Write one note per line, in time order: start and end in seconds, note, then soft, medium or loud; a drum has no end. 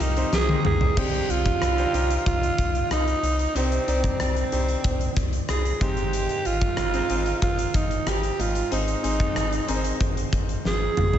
0.00 0.24 C2 loud
0.00 0.61 C3 medium
0.00 1.48 G3 soft
0.00 0.16 C4 medium
0.00 1.48 C4 medium
0.00 0.17 D#4 medium
0.00 0.33 D#4 medium
0.00 0.17 G4 medium
0.00 0.50 A#4 medium
0.00 closed hi-hat medium
0.16 0.38 C4 medium
0.16 0.39 D#4 medium
0.16 0.39 G4 medium
0.16 0.39 C5 medium
0.16 closed hi-hat medium
0.32 0.56 C2 loud
0.32 0.63 G#4 loud
0.32 snare medium
0.32 tambourine loud
0.48 0.82 C4 medium
0.48 0.82 D#4 medium
0.48 0.82 G4 medium
0.48 0.82 A#4 medium
0.48 high tom medium
0.65 0.88 C2 loud
0.65 1.00 G#4 loud
0.65 mid tom medium
0.81 floor tom medium
0.97 1.20 C2 loud
0.97 1.90 C3 medium
0.97 1.52 D4 medium
0.97 1.52 D#4 medium
0.97 1.52 G4 medium
0.97 1.32 G4 loud
0.97 1.53 C5 medium
0.97 kick loud
0.97 crash medium
1.13 closed hi-hat medium
1.30 1.53 C2 medium
1.30 2.26 F4 loud
1.30 closed hi-hat medium
1.45 kick medium
1.45 closed hi-hat soft
1.62 1.85 C2 loud
1.62 cross-stick loud
1.62 closed hi-hat medium
1.77 1.89 D4 medium
1.77 1.89 D#4 medium
1.77 1.89 G4 medium
1.77 1.89 C5 medium
1.77 closed hi-hat soft
1.93 2.17 C2 loud
1.93 2.82 D4 medium
1.93 2.82 D#4 medium
1.93 2.82 G4 medium
1.93 2.82 C5 medium
1.93 closed hi-hat medium
2.10 closed hi-hat soft
2.26 2.50 C2 loud
2.26 2.87 F4 loud
2.26 kick medium
2.26 closed hi-hat medium
2.43 closed hi-hat medium
2.58 2.82 C2 loud
2.58 kick medium
2.58 closed hi-hat medium
2.75 closed hi-hat medium
2.91 3.14 C2 medium
2.91 3.58 D#4 medium
2.91 cross-stick loud
2.91 closed hi-hat medium
3.08 closed hi-hat soft
3.23 3.46 C2 loud
3.23 closed hi-hat medium
3.39 closed hi-hat soft
3.55 3.79 C2 loud
3.55 4.48 C3 medium
3.55 4.20 C4 medium
3.55 3.77 D4 medium
3.55 3.77 D#4 medium
3.55 3.78 G4 medium
3.55 3.78 C5 medium
3.55 closed hi-hat medium
3.72 closed hi-hat soft
3.87 4.11 C2 loud
3.87 4.31 D4 medium
3.87 4.32 D#4 medium
3.87 4.32 G4 medium
3.87 4.32 D5 medium
3.87 closed hi-hat medium
4.04 kick medium
4.04 closed hi-hat soft
4.20 4.44 C2 medium
4.20 5.18 C4 medium
4.20 cross-stick loud
4.20 closed hi-hat medium
4.36 closed hi-hat soft
4.52 4.76 C2 medium
4.52 5.40 D4 medium
4.52 5.40 D#4 medium
4.52 5.40 G4 medium
4.52 5.41 C5 medium
4.52 closed hi-hat medium
4.68 closed hi-hat soft
4.84 5.08 C2 loud
4.84 kick medium
4.84 closed hi-hat medium
5.01 closed hi-hat medium
5.16 5.40 C2 loud
5.16 kick medium
5.16 closed hi-hat medium
5.33 closed hi-hat medium
5.49 5.72 C2 loud
5.49 5.84 G#4 medium
5.49 cross-stick loud
5.49 closed hi-hat medium
5.65 closed hi-hat soft
5.81 6.28 G#1 medium
5.81 6.74 G#2 medium
5.81 6.72 G#3 medium
5.81 6.71 C4 medium
5.81 6.72 D#4 medium
5.81 6.48 G4 loud
5.81 6.72 C5 medium
5.81 kick loud
5.81 closed hi-hat medium
5.97 closed hi-hat soft
6.13 closed hi-hat medium
6.29 closed hi-hat soft
6.45 6.69 G#1 medium
6.45 7.42 F4 loud
6.45 closed hi-hat medium
6.61 kick medium
6.61 closed hi-hat soft
6.77 7.01 G#1 medium
6.77 cross-stick loud
6.77 closed hi-hat medium
6.93 7.05 C4 medium
6.93 7.05 D#4 medium
6.93 7.05 G#4 medium
6.93 7.05 C5 medium
6.93 closed hi-hat soft
7.09 7.33 G#1 loud
7.09 7.98 C4 medium
7.09 7.98 D#4 medium
7.09 7.98 G#4 medium
7.09 7.98 C5 medium
7.09 closed hi-hat medium
7.26 closed hi-hat soft
7.42 7.66 G#1 medium
7.42 7.77 F4 medium
7.42 kick medium
7.42 closed hi-hat medium
7.59 closed hi-hat medium
7.74 7.98 G#1 loud
7.74 8.10 D#4 medium
7.74 kick medium
7.74 closed hi-hat medium
7.91 closed hi-hat soft
8.07 8.30 G#1 loud
8.07 8.43 G4 medium
8.07 cross-stick loud
8.07 closed hi-hat medium
8.23 closed hi-hat soft
8.39 8.63 G#1 medium
8.39 9.32 G#2 medium
8.39 8.72 F4 medium
8.39 closed hi-hat medium
8.55 closed hi-hat soft
8.71 8.95 G#1 loud
8.71 8.93 C4 medium
8.71 8.93 D#4 medium
8.71 9.97 D#4 medium
8.71 8.93 G#4 medium
8.71 8.94 C5 medium
8.71 closed hi-hat medium
8.88 closed hi-hat soft
9.03 9.27 G#1 loud
9.03 9.47 C4 medium
9.03 9.48 D#4 medium
9.03 9.48 G#4 medium
9.03 9.48 C5 medium
9.03 closed hi-hat medium
9.20 kick medium
9.20 closed hi-hat soft
9.36 9.60 G#1 loud
9.36 cross-stick loud
9.36 closed hi-hat medium
9.52 closed hi-hat soft
9.68 9.92 G#1 medium
9.68 10.56 C4 medium
9.68 10.56 D#4 medium
9.68 10.57 G#4 medium
9.68 9.75 A#4 medium
9.68 closed hi-hat medium
9.75 10.60 C5 medium
9.84 closed hi-hat soft
10.00 10.24 G#1 loud
10.00 kick medium
10.00 closed hi-hat medium
10.17 closed hi-hat medium
10.33 10.56 G#1 loud
10.33 kick medium
10.33 closed hi-hat medium
10.49 closed hi-hat medium
10.65 10.88 G#1 loud
10.65 11.18 G#4 medium
10.65 snare medium
10.97 11.18 G#1 medium
10.97 mid tom medium
11.14 floor tom medium